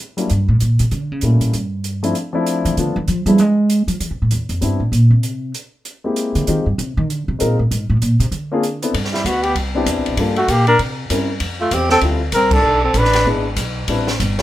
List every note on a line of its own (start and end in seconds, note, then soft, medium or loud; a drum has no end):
0.17 0.28 F#3 medium
0.17 0.28 G3 medium
0.17 0.29 A#3 medium
0.17 0.29 D4 medium
0.17 0.29 E4 medium
0.17 closed hi-hat soft
0.30 0.48 G2 medium
0.30 closed hi-hat soft
0.48 0.60 A2 medium
0.60 0.79 A#2 medium
0.60 closed hi-hat soft
0.79 0.91 C3 medium
0.79 closed hi-hat soft
0.91 1.00 C#3 medium
0.91 closed hi-hat soft
1.00 1.12 D3 loud
1.12 1.22 C#3 medium
1.21 1.40 A#2 medium
1.21 1.54 G3 soft
1.21 1.54 A3 soft
1.21 1.54 A#3 soft
1.21 1.54 C#4 soft
1.21 1.54 E4 medium
1.21 closed hi-hat soft
1.40 1.52 A2 medium
1.40 closed hi-hat soft
1.53 2.11 G2 medium
1.53 closed hi-hat soft
1.84 closed hi-hat soft
2.03 2.14 F3 medium
2.03 2.14 A3 medium
2.03 2.14 C4 medium
2.03 2.14 D4 medium
2.03 2.15 E4 medium
2.03 closed hi-hat soft
2.15 closed hi-hat soft
2.33 2.74 F3 medium
2.33 2.75 A3 medium
2.33 2.75 C4 medium
2.33 2.75 D4 medium
2.33 2.75 E4 medium
2.46 closed hi-hat medium
2.65 2.77 E3 loud
2.65 closed hi-hat soft
2.77 2.95 D3 medium
2.77 2.94 F3 medium
2.77 2.94 A3 medium
2.77 2.94 B3 medium
2.77 2.95 D4 medium
2.77 2.95 F4 medium
2.77 closed hi-hat soft
2.96 3.07 E3 loud
3.08 3.25 F3 medium
3.08 closed hi-hat soft
3.26 3.37 F3 medium
3.26 3.40 G3 loud
3.26 3.37 G#3 medium
3.26 3.38 B3 medium
3.26 3.38 D4 medium
3.26 3.38 E4 medium
3.26 closed hi-hat soft
3.38 3.87 G#3 medium
3.38 closed hi-hat soft
3.70 closed hi-hat soft
3.88 4.00 F3 medium
3.88 closed hi-hat soft
4.00 4.10 E3 medium
4.00 closed hi-hat soft
4.11 4.21 C3 medium
4.22 4.31 A2 medium
4.31 4.49 E2 medium
4.31 closed hi-hat soft
4.49 4.61 F2 medium
4.49 closed hi-hat soft
4.61 4.79 G2 medium
4.61 4.79 G3 medium
4.61 4.79 B3 soft
4.61 4.79 C4 medium
4.61 4.79 D4 soft
4.61 4.80 E4 medium
4.61 closed hi-hat soft
4.80 4.91 A2 medium
4.92 5.10 A#2 medium
4.92 closed hi-hat soft
5.10 5.51 C3 medium
5.23 closed hi-hat soft
5.54 closed hi-hat soft
5.85 closed hi-hat soft
6.04 6.45 G#3 medium
6.04 6.45 A#3 medium
6.04 6.45 C4 medium
6.04 6.45 E4 medium
6.04 6.45 G4 medium
6.16 closed hi-hat soft
6.35 6.47 D3 medium
6.35 closed hi-hat soft
6.47 6.66 D#3 medium
6.47 6.64 G#3 medium
6.47 6.64 C4 medium
6.47 6.65 D#4 medium
6.47 6.65 F4 soft
6.47 6.65 G4 medium
6.47 closed hi-hat soft
6.66 6.78 G2 medium
6.78 6.96 C3 medium
6.78 closed hi-hat soft
6.97 7.09 D#3 loud
7.09 7.27 D3 medium
7.09 closed hi-hat soft
7.28 7.40 C3 medium
7.39 7.59 A#2 medium
7.39 7.56 G#3 medium
7.39 7.56 C4 medium
7.39 7.57 D#4 medium
7.39 7.57 F4 soft
7.39 7.57 A#4 medium
7.39 closed hi-hat medium
7.59 7.70 A2 medium
7.71 7.89 G#2 medium
7.71 closed hi-hat soft
7.90 8.01 A2 medium
8.02 8.19 A#2 medium
8.02 closed hi-hat soft
8.20 8.31 C3 medium
8.20 closed hi-hat soft
8.31 8.84 D3 medium
8.31 closed hi-hat soft
8.52 8.62 A#3 medium
8.52 8.62 C4 medium
8.52 8.62 D4 medium
8.52 8.63 F4 medium
8.52 8.63 G#4 medium
8.63 closed hi-hat medium
8.82 8.93 B3 medium
8.82 8.93 C4 medium
8.82 8.93 D4 medium
8.82 8.93 E4 medium
8.82 8.94 A4 medium
8.82 closed hi-hat soft
8.94 9.24 G2 medium
8.94 kick soft
8.94 ride medium
9.05 snare soft
9.12 9.28 G3 medium
9.12 9.28 E4 medium
9.12 snare soft
9.25 9.55 D2 medium
9.25 9.44 B3 medium
9.25 9.45 F#4 medium
9.25 kick soft
9.25 hi-hat pedal medium
9.25 ride medium
9.43 9.56 B3 medium
9.43 9.55 G4 medium
9.43 ride soft
9.55 9.86 C2 medium
9.55 kick soft
9.55 ride medium
9.74 10.15 B3 medium
9.74 10.16 C4 medium
9.74 10.16 D4 medium
9.74 10.16 E4 medium
9.74 10.16 G4 medium
9.86 9.97 E2 medium
9.86 kick soft
9.86 hi-hat pedal medium
9.86 ride medium
9.97 10.07 C2 medium
10.06 10.16 B1 medium
10.06 ride soft
10.17 10.47 G2 medium
10.17 10.35 G3 medium
10.17 10.35 A#3 medium
10.17 10.35 D4 medium
10.17 10.36 F4 medium
10.17 kick soft
10.17 ride medium
10.21 10.36 A4 medium
10.36 10.50 A3 medium
10.36 10.52 F#4 medium
10.36 ride soft
10.48 10.78 A#2 medium
10.48 10.67 A#3 medium
10.48 10.68 G4 medium
10.48 kick soft
10.48 hi-hat pedal soft
10.48 ride medium
10.67 10.79 D4 medium
10.67 10.79 A#4 loud
10.67 ride soft
10.79 11.09 C3 medium
10.79 kick soft
10.79 ride medium
11.10 11.40 G2 medium
11.10 11.27 G3 medium
11.10 11.27 C4 medium
11.10 11.28 C#4 medium
11.10 11.28 E4 medium
11.10 11.28 A#4 medium
11.10 kick soft
11.10 hi-hat pedal medium
11.10 ride medium
11.40 11.71 F2 medium
11.40 kick soft
11.40 ride medium
11.61 11.75 A3 medium
11.61 11.75 F4 medium
11.71 12.01 E2 medium
11.71 11.91 C4 medium
11.71 11.91 G4 medium
11.71 kick soft
11.71 hi-hat pedal medium
11.71 ride medium
11.90 12.03 C4 medium
11.90 11.99 A4 medium
11.90 snare soft
12.01 12.32 D2 medium
12.01 12.20 G3 medium
12.01 12.20 C4 medium
12.01 12.20 E4 medium
12.01 12.20 F4 medium
12.01 12.21 A4 medium
12.01 kick soft
12.01 ride medium
12.32 12.63 C2 medium
12.32 12.55 C4 medium
12.32 12.55 A#4 medium
12.32 kick soft
12.32 hi-hat pedal medium
12.32 ride medium
12.51 12.84 D4 medium
12.51 12.84 A4 medium
12.51 kick medium
12.51 crash medium
12.64 12.93 B1 medium
12.84 12.99 C4 medium
12.84 12.99 A4 medium
12.94 13.24 A1 medium
12.94 13.28 D4 medium
12.94 kick soft
12.94 hi-hat pedal soft
12.94 ride medium
12.98 13.28 B4 medium
13.05 snare soft
13.13 snare soft
13.13 ride medium
13.25 13.56 G#1 medium
13.25 13.43 G#3 medium
13.25 13.44 B3 medium
13.25 13.44 D4 medium
13.25 13.44 E4 medium
13.25 13.44 B4 medium
13.25 kick soft
13.56 13.87 B1 medium
13.56 kick soft
13.56 hi-hat pedal medium
13.56 ride medium
13.88 14.18 A1 medium
13.88 14.06 G3 medium
13.88 14.06 C4 medium
13.88 14.06 D4 medium
13.88 14.07 E4 medium
13.88 14.07 B4 medium
13.88 kick soft
13.88 ride medium
14.07 snare soft
14.19 14.42 G1 medium
14.19 kick soft
14.19 hi-hat pedal medium
14.19 ride medium
14.39 snare medium
14.39 ride soft